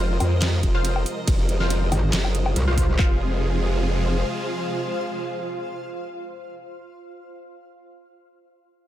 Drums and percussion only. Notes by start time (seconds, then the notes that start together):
0.20 open hi-hat, low woodblock
0.42 snare, clap, closed hi-hat, ride
0.63 kick, closed hi-hat
0.85 closed hi-hat, ride
0.96 low woodblock
1.06 open hi-hat
1.27 kick, closed hi-hat, ride
1.49 closed hi-hat
1.60 snare
1.70 closed hi-hat, ride
1.92 open hi-hat, low woodblock
2.13 snare, clap, closed hi-hat, ride
2.25 low woodblock
2.35 closed hi-hat
2.46 low woodblock
2.56 closed hi-hat, ride
2.78 kick, open hi-hat
2.99 kick, clap